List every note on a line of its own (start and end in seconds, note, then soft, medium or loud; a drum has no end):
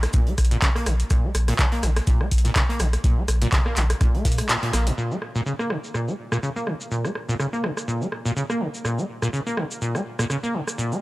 0.03 cross-stick medium
0.03 snare soft
0.03 closed hi-hat medium
0.13 0.29 A#2 medium
0.13 kick loud
0.13 closed hi-hat medium
0.13 shaker loud
0.27 0.33 A#3 loud
0.27 closed hi-hat soft
0.38 0.55 A#1 loud
0.38 kick medium
0.38 cross-stick medium
0.38 open hi-hat loud
0.38 shaker medium
0.45 closed hi-hat medium
0.51 0.57 A#2 loud
0.51 closed hi-hat medium
0.62 0.69 C#3 medium
0.62 kick loud
0.62 snare loud
0.62 clap loud
0.62 closed hi-hat medium
0.62 shaker medium
0.76 0.88 A#3 medium
0.76 cross-stick medium
0.76 closed hi-hat medium
0.86 1.03 A#1 medium
0.86 0.94 C#3 medium
0.86 cross-stick medium
0.86 open hi-hat medium
0.86 shaker medium
1.00 closed hi-hat medium
1.10 1.25 A#2 medium
1.10 kick loud
1.10 cross-stick medium
1.10 closed hi-hat medium
1.10 shaker loud
1.24 1.30 A#3 loud
1.35 1.52 A#1 loud
1.35 cross-stick medium
1.35 open hi-hat loud
1.35 shaker medium
1.48 1.54 A#2 loud
1.48 cross-stick medium
1.48 closed hi-hat soft
1.48 closed hi-hat medium
1.59 1.66 C#3 medium
1.59 kick loud
1.59 snare loud
1.59 clap loud
1.59 closed hi-hat medium
1.59 shaker medium
1.72 1.85 A#3 medium
1.72 closed hi-hat soft
1.83 2.00 A#1 loud
1.83 1.90 C#3 medium
1.83 cross-stick medium
1.83 open hi-hat medium
1.83 shaker medium
1.96 cross-stick medium
1.96 snare soft
1.96 closed hi-hat medium
2.07 2.22 A#2 medium
2.07 kick loud
2.07 closed hi-hat medium
2.07 shaker medium
2.21 2.27 A#3 loud
2.21 cross-stick medium
2.31 2.48 A#1 loud
2.31 kick medium
2.31 open hi-hat loud
2.31 shaker medium
2.38 closed hi-hat medium
2.44 2.51 A#2 loud
2.44 snare soft
2.44 closed hi-hat medium
2.56 2.63 C#3 medium
2.56 kick loud
2.56 cross-stick medium
2.56 snare loud
2.56 clap loud
2.56 closed hi-hat medium
2.56 shaker loud
2.69 2.81 A#3 medium
2.69 closed hi-hat soft
2.79 2.97 A#1 medium
2.79 2.87 C#3 medium
2.79 cross-stick medium
2.79 open hi-hat medium
2.79 shaker medium
2.93 cross-stick medium
2.93 closed hi-hat medium
3.04 3.19 A#2 medium
3.04 kick loud
3.04 closed hi-hat medium
3.04 shaker medium
3.17 3.23 A#3 loud
3.28 3.45 A#1 loud
3.28 cross-stick medium
3.28 open hi-hat loud
3.28 shaker medium
3.42 3.48 A#2 loud
3.42 closed hi-hat medium
3.52 3.60 C#3 medium
3.52 kick loud
3.52 snare loud
3.52 clap loud
3.52 closed hi-hat medium
3.52 shaker medium
3.66 3.78 A#3 medium
3.66 cross-stick medium
3.77 3.94 A#1 loud
3.77 3.84 C#3 medium
3.77 clap medium
3.77 open hi-hat medium
3.77 shaker medium
3.90 cross-stick medium
3.90 closed hi-hat medium
4.01 4.16 A#2 medium
4.01 kick loud
4.01 cross-stick medium
4.01 closed hi-hat medium
4.01 shaker medium
4.14 4.40 A#3 loud
4.14 closed hi-hat soft
4.25 4.42 A#2 medium
4.25 kick medium
4.25 snare loud
4.25 open hi-hat loud
4.25 shaker medium
4.32 closed hi-hat medium
4.38 4.47 G#3 medium
4.38 cross-stick medium
4.38 closed hi-hat soft
4.38 closed hi-hat medium
4.49 4.57 A#2 medium
4.49 snare loud
4.49 clap loud
4.49 closed hi-hat medium
4.49 shaker medium
4.63 4.71 A#2 medium
4.63 closed hi-hat soft
4.73 4.90 A#1 medium
4.73 4.88 A#3 medium
4.73 cross-stick medium
4.73 snare loud
4.73 open hi-hat medium
4.73 shaker medium
4.87 4.93 G#2 loud
4.87 closed hi-hat medium
4.98 5.12 A#2 medium
4.98 shaker medium
5.11 5.17 A#3 medium
5.11 shaker soft
5.22 cross-stick medium
5.35 5.41 A#2 loud
5.35 shaker medium
5.46 5.53 C#3 medium
5.46 shaker medium
5.59 5.72 A#3 medium
5.59 cross-stick medium
5.59 shaker soft
5.70 5.78 C#3 medium
5.70 cross-stick medium
5.84 shaker medium
5.94 6.09 A#2 medium
5.94 cross-stick medium
5.94 shaker medium
6.08 6.14 A#3 loud
6.08 shaker soft
6.32 6.38 A#2 loud
6.32 cross-stick medium
6.32 shaker medium
6.43 6.50 C#3 medium
6.43 shaker medium
6.56 6.68 A#3 medium
6.56 shaker soft
6.67 6.74 C#3 medium
6.67 cross-stick medium
6.81 shaker medium
6.91 7.06 A#2 medium
6.91 shaker medium
7.04 7.10 A#3 loud
7.04 cross-stick medium
7.04 shaker soft
7.15 cross-stick medium
7.29 7.35 A#2 loud
7.29 shaker medium
7.39 7.47 C#3 medium
7.39 cross-stick medium
7.39 shaker medium
7.53 7.65 A#3 medium
7.53 shaker soft
7.64 7.71 C#3 medium
7.64 cross-stick medium
7.77 cross-stick medium
7.77 shaker medium
7.88 8.03 A#2 medium
7.88 shaker medium
8.01 8.07 A#3 loud
8.01 shaker soft
8.12 cross-stick medium
8.25 8.31 A#2 loud
8.25 shaker medium
8.36 8.44 C#3 medium
8.36 shaker medium
8.50 8.62 A#3 medium
8.50 cross-stick medium
8.50 shaker soft
8.60 8.68 C#3 medium
8.74 shaker medium
8.85 9.00 A#2 medium
8.85 cross-stick medium
8.85 shaker soft
8.98 9.04 A#3 medium
8.98 shaker soft
9.22 9.28 A#2 loud
9.22 cross-stick medium
9.22 shaker medium
9.33 9.40 C#3 medium
9.33 shaker medium
9.46 9.59 A#3 medium
9.46 shaker soft
9.57 9.65 C#3 medium
9.57 cross-stick medium
9.71 shaker medium
9.82 9.96 A#2 medium
9.82 shaker medium
9.95 10.01 A#3 loud
9.95 cross-stick medium
9.95 shaker soft
10.19 10.25 A#2 loud
10.19 cross-stick medium
10.19 shaker medium
10.30 10.37 C#3 medium
10.30 cross-stick medium
10.30 shaker medium
10.43 10.56 A#3 medium
10.43 shaker soft
10.54 10.61 C#3 medium
10.67 cross-stick medium
10.67 shaker medium
10.78 10.93 A#2 medium
10.78 shaker medium
10.92 10.98 A#3 loud
10.92 shaker soft